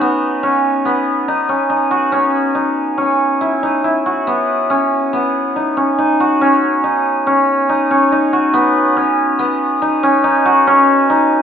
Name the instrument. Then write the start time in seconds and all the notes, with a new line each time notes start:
hammered dulcimer
Already playing: C#4 D#4 F#4
0.01 B3
0.43 C#4
0.85 B3
1.28 D#4
1.49 C#4
1.70 D#4
1.91 F#4
2.12 C#4
2.55 D#4
2.98 C#4
3.41 E4
3.63 D#4
3.84 E4
4.06 F#4
4.27 B3
4.70 C#4
5.13 B3
5.56 D#4
5.77 C#4
5.98 D#4
6.20 F#4
6.41 C#4
6.84 D#4
7.27 C#4
7.69 D#4
7.91 C#4
8.12 D#4
8.33 F#4
8.54 B3
8.97 C#4
9.39 B3
9.82 D#4
10.03 C#4
10.24 D#4
10.45 F#4
10.67 C#4
11.10 D#4